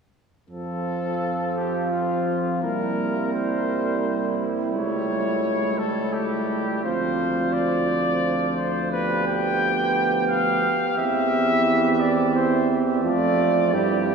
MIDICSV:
0, 0, Header, 1, 6, 480
1, 0, Start_track
1, 0, Key_signature, -1, "major"
1, 0, Tempo, 705882
1, 343, Time_signature, 3, 2, 24, 8
1, 4658, Tempo, 689655
1, 6097, Key_signature, 0, "major"
1, 9738, End_track
2, 0, Start_track
2, 0, Title_t, "Trumpet"
2, 0, Program_c, 0, 56
2, 343, Note_on_c, 0, 69, 53
2, 1034, Note_off_c, 0, 69, 0
2, 1058, Note_on_c, 0, 67, 45
2, 1292, Note_off_c, 0, 67, 0
2, 1296, Note_on_c, 0, 65, 46
2, 1781, Note_off_c, 0, 65, 0
2, 1784, Note_on_c, 0, 70, 52
2, 2258, Note_off_c, 0, 70, 0
2, 2266, Note_on_c, 0, 72, 52
2, 2969, Note_off_c, 0, 72, 0
2, 3217, Note_on_c, 0, 73, 57
2, 3932, Note_on_c, 0, 69, 53
2, 3942, Note_off_c, 0, 73, 0
2, 4170, Note_on_c, 0, 67, 52
2, 4180, Note_off_c, 0, 69, 0
2, 4648, Note_off_c, 0, 67, 0
2, 4652, Note_on_c, 0, 72, 60
2, 5129, Note_on_c, 0, 74, 67
2, 5140, Note_off_c, 0, 72, 0
2, 5847, Note_off_c, 0, 74, 0
2, 5851, Note_on_c, 0, 72, 58
2, 6092, Note_off_c, 0, 72, 0
2, 6099, Note_on_c, 0, 71, 67
2, 6341, Note_off_c, 0, 71, 0
2, 6347, Note_on_c, 0, 79, 78
2, 7037, Note_off_c, 0, 79, 0
2, 7043, Note_on_c, 0, 77, 71
2, 7515, Note_off_c, 0, 77, 0
2, 7532, Note_on_c, 0, 76, 77
2, 8243, Note_on_c, 0, 74, 65
2, 8254, Note_off_c, 0, 76, 0
2, 8482, Note_off_c, 0, 74, 0
2, 8486, Note_on_c, 0, 72, 60
2, 8721, Note_off_c, 0, 72, 0
2, 8966, Note_on_c, 0, 74, 74
2, 9446, Note_on_c, 0, 67, 61
2, 9456, Note_off_c, 0, 74, 0
2, 9738, Note_off_c, 0, 67, 0
2, 9738, End_track
3, 0, Start_track
3, 0, Title_t, "Flugelhorn"
3, 0, Program_c, 1, 56
3, 339, Note_on_c, 1, 65, 36
3, 1763, Note_off_c, 1, 65, 0
3, 1787, Note_on_c, 1, 64, 37
3, 4653, Note_on_c, 1, 65, 41
3, 4663, Note_off_c, 1, 64, 0
3, 5896, Note_off_c, 1, 65, 0
3, 6093, Note_on_c, 1, 67, 47
3, 8935, Note_off_c, 1, 67, 0
3, 8962, Note_on_c, 1, 65, 46
3, 9445, Note_on_c, 1, 64, 42
3, 9456, Note_off_c, 1, 65, 0
3, 9738, Note_off_c, 1, 64, 0
3, 9738, End_track
4, 0, Start_track
4, 0, Title_t, "French horn"
4, 0, Program_c, 2, 60
4, 336, Note_on_c, 2, 60, 37
4, 1761, Note_off_c, 2, 60, 0
4, 1791, Note_on_c, 2, 58, 38
4, 3197, Note_off_c, 2, 58, 0
4, 3224, Note_on_c, 2, 57, 39
4, 4628, Note_off_c, 2, 57, 0
4, 4654, Note_on_c, 2, 60, 45
4, 5871, Note_off_c, 2, 60, 0
4, 6095, Note_on_c, 2, 59, 47
4, 7499, Note_off_c, 2, 59, 0
4, 7527, Note_on_c, 2, 60, 51
4, 9738, Note_off_c, 2, 60, 0
4, 9738, End_track
5, 0, Start_track
5, 0, Title_t, "Trombone"
5, 0, Program_c, 3, 57
5, 341, Note_on_c, 3, 53, 38
5, 1764, Note_off_c, 3, 53, 0
5, 1790, Note_on_c, 3, 55, 39
5, 4628, Note_off_c, 3, 55, 0
5, 4657, Note_on_c, 3, 53, 44
5, 7308, Note_off_c, 3, 53, 0
5, 7531, Note_on_c, 3, 52, 53
5, 8938, Note_off_c, 3, 52, 0
5, 8966, Note_on_c, 3, 57, 47
5, 9450, Note_on_c, 3, 55, 44
5, 9461, Note_off_c, 3, 57, 0
5, 9738, Note_off_c, 3, 55, 0
5, 9738, End_track
6, 0, Start_track
6, 0, Title_t, "Tuba"
6, 0, Program_c, 4, 58
6, 341, Note_on_c, 4, 41, 36
6, 1764, Note_off_c, 4, 41, 0
6, 1791, Note_on_c, 4, 36, 38
6, 3197, Note_off_c, 4, 36, 0
6, 3223, Note_on_c, 4, 37, 40
6, 4628, Note_off_c, 4, 37, 0
6, 4650, Note_on_c, 4, 38, 42
6, 7304, Note_off_c, 4, 38, 0
6, 7523, Note_on_c, 4, 40, 53
6, 8934, Note_off_c, 4, 40, 0
6, 8964, Note_on_c, 4, 41, 49
6, 9449, Note_on_c, 4, 43, 50
6, 9459, Note_off_c, 4, 41, 0
6, 9738, Note_off_c, 4, 43, 0
6, 9738, End_track
0, 0, End_of_file